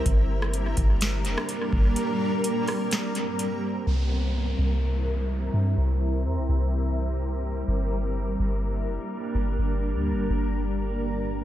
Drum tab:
HH |x---x-x-x-x-x---|x---x-o-x-x-x---|----------------|----------------|
SD |---r----o--r----|------r-o-------|----------------|----------------|
BD |o-----o-------o-|----------------|----------------|----------------|

HH |----------------|----------------|
SD |----------------|----------------|
BD |----------------|----------------|